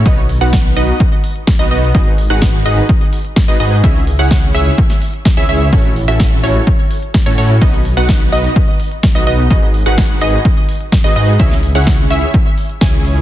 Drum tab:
HH |xxoxxxoxxxoxxxox|xxo-xxoxxxoxxxox|xxoxxxoxxxoxxxox|xxoxxxoxxxoxxxox|
SD |----o-------o---|----o-------o---|----o----o--o---|----o-------o---|
BD |o---o---o---o---|o---o---o---o---|o---o---o---o---|o---o---o---o---|

HH |xxoxxxoxxxoxxxox|xxoxxxoxxxoxxxox|xxoxxxoxxxoxxxox|
SD |----o-------o---|----o-------o---|-o--o-------o---|
BD |o---o---o---o---|o---o---o---o---|o---o---o---o---|